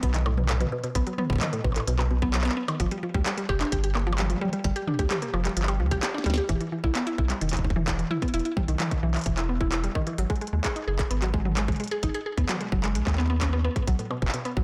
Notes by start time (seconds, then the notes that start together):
0.03 B1 B3, kick, closed hi-hat
0.14 D#3, clap, closed hi-hat
0.26 A2, percussion blips
0.37 B2, mid tom
0.49 A2, clap, closed hi-hat, percussion blips
0.61 B2, closed hi-hat, mid tom
0.72 B2
0.84 B2, closed hi-hat
0.95 B1 B3, kick, closed hi-hat
1.07 F#3, closed hi-hat
1.18 B3, mid tom
1.30 F#1 B3, kick
1.33 kick
1.36 kick
1.38 D#3, kick, clap, closed hi-hat, mid tom
1.53 A2, closed hi-hat
1.64 A1 B2, kick, percussion blips
1.72 A2, clap, closed hi-hat, percussion blips
1.80 percussion blips
1.88 B1 B2, closed hi-hat
1.99 B2, clap, percussion blips
2.11 B2
2.22 B3, kick
2.34 F#3, clap, closed hi-hat
2.41 B3, clap, closed hi-hat
2.49 clap
2.57 B3
2.68 D#3, closed hi-hat, percussion blips
2.80 G1 F3, kick, closed hi-hat
2.91 G3, closed hi-hat
3.03 F3
3.14 D2 G3, kick
3.26 G3, clap, closed hi-hat
3.38 G3, closed hi-hat
3.49 F1 G4, kick, percussion blips
3.61 D4, clap, closed hi-hat
3.72 G1 G4, kick, closed hi-hat
3.84 G4, closed hi-hat
3.95 A#3, clap, percussion blips
4.07 F3, mid tom
4.13 mid tom, percussion blips
4.18 G3, clap, closed hi-hat, mid tom
4.30 F3, closed hi-hat, mid tom
4.34 mid tom
4.38 mid tom
4.41 G3, mid tom
4.45 mid tom
4.49 G3, closed hi-hat, mid tom
4.64 G1 G3, kick, closed hi-hat
4.76 G4, closed hi-hat
4.87 D4, mid tom
4.99 D2 G4, kick, closed hi-hat
5.11 G4, clap, closed hi-hat, mid tom
5.22 A#3, closed hi-hat
5.34 F1 F3, percussion blips
5.45 G3, clap, closed hi-hat
5.57 G1 F3, closed hi-hat
5.62 clap
5.68 G3, closed hi-hat, percussion blips
5.80 D2 F3
5.91 C2 G4, kick, closed hi-hat
6.03 G4, snare, clap, closed hi-hat
6.14 D4, snare
6.24 D2 G3, snare, closed hi-hat
6.30 snare
6.34 snare
6.36 G4, snare, closed hi-hat
6.49 E1 E3, kick, closed hi-hat
6.61 E3, closed hi-hat
6.72 E3
6.84 B1 E4, kick
6.95 B3, clap, closed hi-hat
7.07 E4, closed hi-hat
7.18 B1 E4, kick
7.30 G3, clap, closed hi-hat
7.41 E1 D#3, closed hi-hat
7.49 E3, kick, clap, closed hi-hat
7.53 closed hi-hat
7.57 kick, closed hi-hat
7.64 D#3, kick
7.70 kick
7.76 E3, mid tom
7.88 E3, kick, clap, closed hi-hat
7.99 E3, closed hi-hat
8.11 E4, mid tom
8.22 B3, kick, closed hi-hat
8.28 closed hi-hat
8.34 E1 E4, closed hi-hat
8.40 closed hi-hat
8.45 E4, closed hi-hat
8.57 G3, kick, mid tom
8.68 B1 D#3, closed hi-hat
8.80 E3, clap, closed hi-hat, mid tom
8.91 D#3, kick, closed hi-hat
9.03 B1 E3
9.14 E3, clap, closed hi-hat
9.17 closed hi-hat
9.19 closed hi-hat
9.21 closed hi-hat
9.24 closed hi-hat
9.26 E1 E3, kick, closed hi-hat
9.38 E4, clap, closed hi-hat
9.49 B3
9.61 E4, kick
9.72 E4, clap, closed hi-hat
9.84 G3, closed hi-hat
9.95 D#3, kick
10.07 E3, closed hi-hat
10.18 G#1 F#3, closed hi-hat
10.30 G#3, kick, closed hi-hat
10.36 closed hi-hat
10.41 G#3, closed hi-hat
10.47 closed hi-hat
10.53 D#2 G#3
10.64 G#4, kick, clap, closed hi-hat
10.76 D#4, closed hi-hat
10.87 F#1 G#4
10.99 G#4, kick, clap, closed hi-hat
11.11 G#1 B3, closed hi-hat
11.22 F#3, clap, closed hi-hat
11.34 G#3, kick
11.45 F#3, mid tom
11.57 G#3, clap, closed hi-hat
11.68 G#3, kick, closed hi-hat, mid tom
11.72 closed hi-hat
11.76 G#3, closed hi-hat
11.80 closed hi-hat
11.84 closed hi-hat
11.88 G#4, closed hi-hat
11.91 closed hi-hat
12.03 G#1 D#4, kick, closed hi-hat
12.14 G#4, closed hi-hat
12.26 G#4
12.38 D#2 B3, kick, closed hi-hat
12.49 F#3, clap, closed hi-hat, mid tom
12.61 G#3, closed hi-hat
12.72 F#1 F#3, kick
12.84 G#3, clap, closed hi-hat
12.95 B1 G#3, closed hi-hat
13.07 D#2 G#3, kick, clap
13.13 clap
13.18 B3, clap
13.24 clap
13.30 B3
13.41 C#4, kick, clap, closed hi-hat
13.53 B3
13.65 B3
13.76 G#2, kick, closed hi-hat
13.87 B1 F#3, kick, closed hi-hat
13.99 A2, closed hi-hat
14.11 B2, percussion blips
14.22 F#1 B2, kick
14.28 clap
14.34 B2, closed hi-hat
14.45 B3, closed hi-hat
14.57 A1 F#3, kick